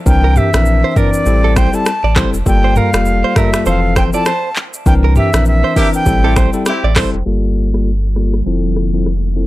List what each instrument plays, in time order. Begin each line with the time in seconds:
0.06 sub bass C2, tine electric piano E3 C4 D4 A#4, flute G5, kick, shaker
0.24 clean electric guitar A#4
0.36 clean electric guitar G4, flute E5, mid tom, shaker
0.53 sub bass A#1, tine electric piano E3 C4 D4 A#4, finger snap, cross-stick, shaker
0.65 shaker
0.84 clean electric guitar C5
0.92 flute E5
0.96 tine electric piano E3 C4 D4 A#4, clean electric guitar A#4, flute D5, kick, mid tom, shaker
1.14 shaker
1.26 sub bass A1, tine electric piano G3 C4 E4 A4, shaker
1.44 clean electric guitar A4
1.56 clean electric guitar C5, flute G5, finger snap, kick, cross-stick, shaker
1.73 tine electric piano G3 C4 E4 A4, flute A5, shaker
1.86 finger snap, cross-stick, shaker
2.04 sub bass A1, clean electric guitar D5
2.16 tine electric piano G3 C4 E4 A4, clean electric guitar C5, finger snap, kick, cross-stick, clap, shaker
2.34 sub bass F1, shaker
2.46 sub bass G1, tine electric piano G3 A#3 F4 A4, flute G5, kick, shaker
2.64 clean electric guitar C5
2.76 clean electric guitar A#4, flute F5, mid tom, shaker
2.93 sub bass F1, tine electric piano G3 A#3 F4 A4, finger snap, cross-stick, shaker
3.05 shaker
3.24 clean electric guitar C5
3.36 tine electric piano G3 A#3 F4 A4, clean electric guitar A#4, flute E5, finger snap, kick, cross-stick, mid tom, shaker
3.53 finger snap, cross-stick, shaker
3.66 sub bass F1, tine electric piano E3 F3 C4 A4, clean electric guitar C5, flute F5, shaker
3.96 clean electric guitar C5, flute G5, finger snap, kick, cross-stick, shaker
4.13 tine electric piano F3 C4 E4 A4, clean electric guitar D5, flute A5, shaker
4.26 clean electric guitar C5, finger snap, cross-stick, shaker
4.56 clap, shaker
4.74 shaker
4.86 sub bass C2, tine electric piano E3 C4 D4 A#4, flute G5, kick, shaker
5.04 clean electric guitar A#4
5.16 clean electric guitar G4, flute E5, mid tom, shaker
5.33 sub bass A#1, tine electric piano E3 C4 D4 A#4, finger snap, cross-stick, shaker
5.45 flute E5, shaker
5.64 clean electric guitar C5
5.76 tine electric piano E3 C4 D4 A#4, horn section D4 E4 G4, clean electric guitar A#4, kick, open hi-hat, shaker
5.93 flute G5, shaker
6.06 sub bass A1, tine electric piano G3 C4 E4 A4, kick, shaker
6.24 horn section C4 E4 G4, clean electric guitar A4
6.36 clean electric guitar C5, finger snap, kick, cross-stick, shaker
6.53 tine electric piano G3 C4 E4 A4, shaker
6.66 horn section C4 E4 G4, finger snap, cross-stick, shaker
6.84 sub bass A1, clean electric guitar D5
6.96 tine electric piano G3 C4 E4 A4, clean electric guitar C5, finger snap, kick, cross-stick, clap, open hi-hat, shaker
7.14 sub bass F1, shaker
7.26 sub bass G1, ambient pad D3 G3 A#3 F4 A4, tine electric piano G3 A#3 F4 A4
7.56 shaker
7.73 tine electric piano G3 A#3 F4 A4, finger snap, cross-stick
8.16 tine electric piano G3 A#3 F4 A4, finger snap, cross-stick
8.34 finger snap, cross-stick
8.46 sub bass F1, ambient pad C3 F3 A3 E4, tine electric piano F3 C4 E4 A4
8.76 finger snap, cross-stick
8.93 tine electric piano F3 C4 E4 A4
9.06 finger snap, cross-stick
9.36 tine electric piano F3 C4 E4 A4, shaker